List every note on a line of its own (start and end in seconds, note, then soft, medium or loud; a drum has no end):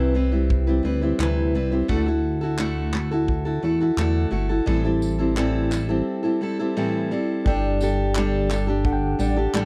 0.00 0.81 C2 loud
0.00 0.15 C3 medium
0.00 0.16 E3 medium
0.00 0.13 G3 medium
0.00 0.14 C4 medium
0.00 0.15 E4 medium
0.00 0.15 B4 medium
0.14 0.32 G3 medium
0.14 0.32 C4 medium
0.14 0.31 E4 medium
0.14 0.30 B4 medium
0.32 0.68 G3 soft
0.32 0.67 C4 soft
0.32 0.66 E4 medium
0.32 0.66 B4 medium
0.50 kick loud
0.67 0.82 G3 soft
0.67 0.83 C4 medium
0.67 0.84 E4 medium
0.67 0.84 B4 medium
0.83 1.13 D2 medium
0.83 1.01 G3 medium
0.83 1.02 C4 medium
0.83 1.01 E4 medium
0.83 1.00 B4 medium
1.01 1.18 G3 soft
1.01 1.19 C4 soft
1.01 1.19 E4 medium
1.01 1.19 B4 medium
1.19 1.56 D2 medium
1.19 1.54 C3 medium
1.19 1.54 E3 medium
1.19 1.53 G3 medium
1.19 1.54 C4 medium
1.19 1.54 E4 medium
1.19 1.55 B4 medium
1.19 clap loud
1.54 1.83 C2 medium
1.54 1.72 G3 medium
1.54 1.71 C4 medium
1.54 1.71 E4 medium
1.54 1.70 B4 medium
1.71 1.88 G3 soft
1.71 1.89 C4 soft
1.71 1.88 E4 soft
1.71 1.89 B4 soft
1.88 3.59 D2 loud
1.88 2.06 D3 medium
1.88 2.06 A3 medium
1.88 2.07 E4 medium
1.88 2.07 F#4 medium
1.88 2.05 A4 medium
1.88 kick loud
2.06 2.42 E4 soft
2.06 2.42 F#4 medium
2.06 2.40 A4 medium
2.41 2.58 E4 soft
2.41 2.59 F#4 soft
2.41 2.59 A4 medium
2.59 2.94 D3 medium
2.59 2.92 A3 medium
2.59 2.93 E4 medium
2.59 2.94 F#4 medium
2.59 2.94 A4 medium
2.59 clap loud
2.93 3.11 A3 medium
2.93 3.11 E4 medium
2.93 3.11 F#4 medium
2.93 3.10 A4 medium
2.93 clap medium
3.11 3.46 E4 soft
3.11 3.45 F#4 medium
3.11 3.44 A4 medium
3.28 kick loud
3.45 3.62 E4 soft
3.45 3.63 F#4 medium
3.45 3.63 A4 medium
3.62 3.92 E2 medium
3.62 3.80 A3 medium
3.62 3.81 E4 medium
3.62 3.80 F#4 medium
3.62 3.79 A4 medium
3.80 3.97 E4 soft
3.80 3.97 F#4 medium
3.80 3.98 A4 medium
3.97 4.26 E2 medium
3.97 4.33 D3 medium
3.97 4.29 A3 medium
3.97 4.30 E4 medium
3.97 4.30 F#4 medium
3.97 4.31 A4 medium
3.97 clap loud
4.31 4.61 G1 medium
4.31 4.49 A3 medium
4.31 4.49 E4 medium
4.31 4.49 F#4 medium
4.31 4.48 A4 medium
4.49 4.66 E4 soft
4.49 4.67 F#4 soft
4.49 4.66 A4 medium
4.66 6.02 A1 loud
4.66 4.84 A2 medium
4.66 4.84 E3 medium
4.66 4.85 G3 medium
4.66 4.84 C4 medium
4.66 4.83 E4 medium
4.66 4.83 A4 medium
4.66 kick loud
4.84 5.19 G3 soft
4.84 5.19 C4 medium
4.84 5.18 E4 medium
4.84 5.17 A4 medium
5.02 tambourine medium
5.18 5.35 G3 soft
5.18 5.36 C4 soft
5.18 5.36 E4 medium
5.18 5.36 A4 medium
5.36 5.71 A2 medium
5.36 5.72 E3 medium
5.36 5.69 G3 medium
5.36 5.71 C4 medium
5.36 5.71 E4 medium
5.36 5.72 A4 medium
5.36 clap loud
5.71 5.89 G3 medium
5.71 5.89 C4 medium
5.71 5.88 E4 medium
5.71 5.87 A4 medium
5.71 clap medium
5.71 tambourine medium
5.89 6.25 G3 medium
5.89 6.23 C4 medium
5.89 6.23 E4 medium
5.89 6.22 A4 medium
6.23 6.40 G3 soft
6.23 6.40 C4 soft
6.23 6.41 E4 medium
6.23 6.41 A4 medium
6.41 6.59 G3 medium
6.41 6.59 C4 medium
6.41 6.58 E4 medium
6.41 6.58 A4 medium
6.59 6.76 G3 medium
6.59 6.76 C4 soft
6.59 6.77 E4 medium
6.59 6.76 A4 medium
6.77 7.11 A2 medium
6.77 7.11 E3 medium
6.77 7.10 G3 medium
6.77 7.11 C4 medium
6.77 7.11 E4 medium
6.77 7.12 A4 medium
7.11 7.45 G3 medium
7.11 7.46 C4 medium
7.11 7.46 E4 medium
7.11 7.47 A4 medium
7.45 9.15 G1 loud
7.45 7.80 G3 medium
7.45 8.39 D4 medium
7.45 7.81 D4 medium
7.45 8.40 G4 medium
7.45 7.81 G4 medium
7.45 8.40 A4 medium
7.45 7.81 A4 medium
7.45 8.41 G5 medium
7.45 kick loud
7.81 8.15 G3 medium
7.81 8.16 D4 medium
7.81 8.16 G4 medium
7.81 8.17 A4 medium
7.81 tambourine medium
8.15 8.49 G3 medium
8.15 8.50 D4 medium
8.15 8.51 G4 medium
8.15 8.51 A4 loud
8.15 clap loud
8.50 8.67 G3 medium
8.50 8.68 D4 medium
8.50 8.67 G4 medium
8.50 8.66 A4 medium
8.50 clap medium
8.50 tambourine medium
8.67 9.19 D4 soft
8.67 9.19 G4 medium
8.67 9.19 A4 medium
8.85 9.65 D4 medium
8.85 9.65 G4 medium
8.85 9.65 A4 medium
8.85 8.92 F#5 medium
8.85 kick loud
8.93 9.65 G5 medium
9.19 9.48 A1 medium
9.19 9.36 G3 medium
9.19 9.37 D4 medium
9.19 9.36 G4 medium
9.19 9.35 A4 medium
9.19 tambourine medium
9.36 9.53 D4 soft
9.36 9.54 G4 medium
9.36 9.54 A4 medium
9.54 9.65 A1 medium
9.54 9.65 G3 medium
9.54 9.65 D4 medium
9.54 9.65 G4 medium
9.54 9.65 A4 medium
9.54 clap loud